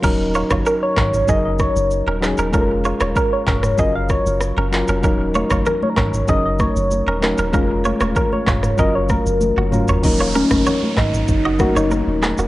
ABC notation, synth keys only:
X:1
M:4/4
L:1/8
Q:1/4=96
K:Ebm
V:1 name="Synth keys"
[G,DEB]3 z [G,DEB]2 z [G,DEA] | [A,DF=AB]3 z [G,DFB]2 z [G,DFB] | [G,DEB]3 z [G,DEB]2 z [G,DEB] | [A,DFB]3 z [G,DFB]2 z [G,DFB] |
[G,B,DEB]3 z2 [G,B,DEB]2 z |]